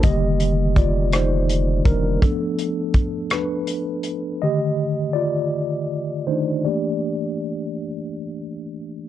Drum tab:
HH |xxxxxx|xxxxxx|------|------|
SD |---r--|---r--|------|------|
BD |o-o--o|o-o---|------|------|